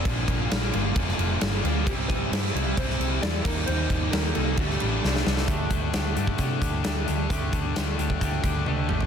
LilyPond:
<<
  \new Staff \with { instrumentName = "Hollow-body jazz guitar" } { \time 4/4 \key d \mixolydian \tempo 4 = 133 d''4. r2 r8 | g'8 b'4. c''4 d''8 bes'8 | c''4 bes'8 a'8 g'4. r8 | r1 |
r1 | }
  \new Staff \with { instrumentName = "Clean electric guitar" } { \time 4/4 \key d \mixolydian r1 | r1 | r1 | <d a d' g'>8 <a d' g'>8 <d a d' g'>8 <d a d' g'>8 <d a d' g'>8 <a d' g'>8 <d a d' g'>8 <a d' g'>8 |
<d a d' g'>8 <a d' g'>8 <d a d' g'>8 <d a d' g'>8 <d a d' g'>8 <a d' g'>8 <d a d' g'>8 <a d' g'>8 | }
  \new Staff \with { instrumentName = "Overdriven electric guitar" } { \time 4/4 \key d \mixolydian <bes, d f bes f'>8 <f bes f'>8 <d f bes f'>8 <f bes f'>8 <bes, d f bes f'>4 <d f bes f'>8 <f bes f'>8 | <c g c' e'>8 <g c' e'>8 <c g c' e'>8 <g c' e'>8 <c g c' e'>4 <c g c' e'>8 <ees g bes ees'>8 | <ees g bes ees'>8 <g bes ees'>8 <ees g bes ees'>8 <g bes ees'>8 <d g a d'>4 <d g a d'>8 <g a d'>8 | r1 |
r1 | }
  \new Staff \with { instrumentName = "Distorted electric guitar" } { \time 4/4 \key d \mixolydian <bes, d f bes f'>4 <d f bes f'>8 <f bes f'>8 <bes, d f bes f'>8 <f bes f'>4 <f bes f'>8 | <c g c' e'>4 <c g c' e'>8 <g c' e'>8 <c g c' e'>8 <g c' e'>4 <ees g bes ees'>8 | <ees g bes ees'>4 <ees g bes ees'>8 <g bes ees'>8 <d g a d'>8 <g a d'>4 <g a d'>8 | <d a d'>4 <d a d'>8 <d a d'>8 <d a d'>4 <d a d'>8 <d a d'>8 |
<d a d'>4 <d a d'>8 <d a d'>8 <d a d'>4 <d a d'>8 <d a d'>8 | }
  \new Staff \with { instrumentName = "Fingered electric bass" } { \clef bass \time 4/4 \key d \mixolydian bes,,8 bes,,8 bes,,8 g,,8 f,,8 f,,8 g,,8 d,8 | c,4 g,8 c,8 c,8 c,8 e,8 ees,8 | ees,8 ees,8 ees,8 c,8 d,8 a,,8 c,8 c,8 | d,8 d,8 d,8 g,8 c8 d,8 d,8 d,8 |
d,8 d,8 d,8 d,8 d,8 d,8 d,8 aes,,8 | }
  \new DrumStaff \with { instrumentName = "Drums" } \drummode { \time 4/4 <cymc bd>8 <cymc bd>8 <cymc sn>8 cymc8 <cymc bd>16 sn16 cymc8 <cymc sn>8 cymc8 | <cymc bd>8 <cymc bd>8 <cymc sn>16 sn16 cymc8 <cymc bd>16 sn16 cymc8 <cymc sn>8 <cymc bd>8 | cymc8 <cymc bd>8 <cymc sn>8 cymc8 <cymc bd>16 sn16 cymc8 sn16 sn16 sn16 sn16 | <hh bd>8 <hh bd>8 <hh sn>8 hh16 bd16 <hh bd>8 <hh bd>8 <hh sn>8 hh8 |
<hh bd>8 <hh bd>8 <hh sn>8 hh16 bd16 <hh bd>8 <hh bd>8 tommh8 toml16 tomfh16 | }
>>